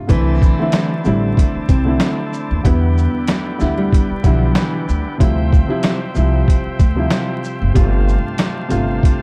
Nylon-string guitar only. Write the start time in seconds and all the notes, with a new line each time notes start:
0.09 E3
1.06 G3
1.37 A3
1.69 C4
2.66 B3
3.29 A3
3.77 G3
4.26 F3
4.56 E3